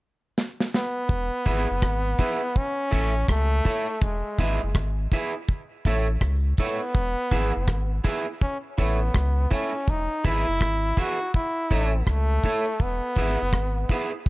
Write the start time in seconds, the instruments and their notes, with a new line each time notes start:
0.38 snare
0.60 snare
0.74 trombone B3, snare
1.09 sub bass E1, kick
1.46 sub bass G#1, clean electric guitar E4 G#4 B4 E5, kick, closed hi-hat
1.70 sub bass F#1
1.82 sub bass G#1, kick, cross-stick
2.18 clean electric guitar E4 G#4 B4 E5, kick, closed hi-hat
2.56 trombone C#4, kick
2.91 sub bass A1, clean electric guitar E4 A4 C#5 E5, kick, closed hi-hat
3.28 sub bass C#2, trombone A3, kick, cross-stick
3.65 clean electric guitar E4 A4 C#5 E5, kick, open hi-hat
4.02 sub bass E1, trombone G#3, kick, hi-hat pedal
4.39 sub bass G#1, clean electric guitar E4 G#4 B4 E5, kick, closed hi-hat
4.63 sub bass F#1
4.75 sub bass G#1, kick, cross-stick
5.12 clean electric guitar E4 G#4 B4 E5, kick, closed hi-hat
5.49 kick
5.85 sub bass A1, clean electric guitar E4 A4 C#5 E5, kick, closed hi-hat
6.21 sub bass C#2, kick, cross-stick
6.57 trombone B3, clean electric guitar E4 A4 C#5 E5, kick, open hi-hat
6.95 sub bass E1, kick, hi-hat pedal
7.31 sub bass G#1, clean electric guitar E4 G#4 B4 E5, kick, closed hi-hat
7.56 sub bass F#1
7.68 sub bass G#1, kick, cross-stick
8.04 clean electric guitar E4 G#4 B4 E5, kick, closed hi-hat
8.41 trombone C#4, kick
8.78 sub bass A1, trombone B3, clean electric guitar E4 A4 C#5 E5, kick, closed hi-hat
9.14 sub bass C#2, kick, cross-stick
9.51 trombone C#4, clean electric guitar E4 A4 C#5 E5, kick, open hi-hat
9.88 sub bass E1, trombone D#4, kick, hi-hat pedal
10.24 sub bass G#1, clean electric guitar E4 G#4 B4 E5, trombone E4, kick, closed hi-hat
10.48 sub bass F#1
10.61 sub bass G#1, kick, cross-stick
10.97 clean electric guitar E4 G#4 B4 E5, trombone F#4, kick, closed hi-hat
11.34 trombone E4, kick
11.71 sub bass A1, clean electric guitar E4 A4 C#5 E5, kick, closed hi-hat
12.07 sub bass C#2, trombone A3, kick, cross-stick
12.43 clean electric guitar E4 A4 C#5 E5, kick, open hi-hat
12.80 sub bass E1, trombone B3, kick
13.15 sub bass G#1, clean electric guitar E4 G#4 B4 E5, kick, closed hi-hat
13.42 sub bass F#1
13.53 sub bass G#1, kick, cross-stick
13.89 trombone B3, clean electric guitar E4 G#4 B4 E5, kick, closed hi-hat
14.26 kick